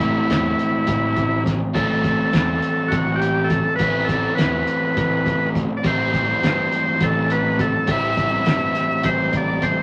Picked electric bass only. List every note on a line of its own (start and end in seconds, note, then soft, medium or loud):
0.00 0.19 A1 medium
0.30 0.53 E2 medium
0.88 1.60 A1 medium
1.75 2.23 A1 medium
2.33 2.57 E2 medium
2.93 3.65 A1 medium
3.80 4.28 A1 medium
4.39 4.62 E2 medium
4.98 5.69 A1 medium
5.85 6.32 A1 medium
6.42 6.66 G2 medium
7.01 7.73 A1 medium
7.88 8.36 A1 medium
8.47 8.71 G2 medium
9.05 9.76 A1 medium